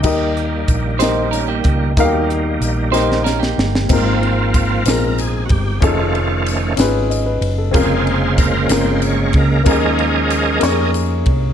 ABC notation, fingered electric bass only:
X:1
M:6/8
L:1/8
Q:3/8=62
K:Ebmix
V:1 name="Fingered electric bass" clef=bass
E,,2 B,,,3 D,, | E,,2 B,,,3 G,,, | A,,,3 B,,,2 G,,, | F,,,3 ^G,,,2 _G,,, |
F,,,3 G,,,2 D,, | E,,3 F,,2 C,, |]